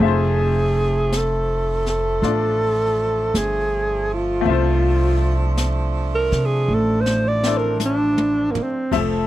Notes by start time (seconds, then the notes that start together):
Already playing: A3 G#4
0.00 F1 F3 A3 C4 E5, brush sweep
0.05 F4 C5
1.12 brush sweep, snare, hi-hat pedal
1.17 A4
1.86 A4, snare
2.22 A1 D4 F4 D5, brush sweep, snare
3.34 G1 G#4, brush sweep, snare, hi-hat pedal
4.14 F4
4.41 A3 C4
4.46 C2 D4 E5, brush sweep
4.50 F4 C5
5.57 brush sweep, snare, hi-hat pedal
6.15 A#4
6.32 C3, snare
6.46 G#4
6.68 A1
6.74 A4
7.01 C5
7.06 snare
7.28 D5
7.44 C4 D4 E4, snare
7.48 A4
7.57 A#4
7.80 hi-hat pedal, high tom
7.85 D4
8.18 high tom
8.51 A#3
8.55 muted upright bass stroke, floor tom
8.63 C4
8.91 F1 F3 A3 C4 A4 E5, brush sweep, kick, snare, ride
8.97 A4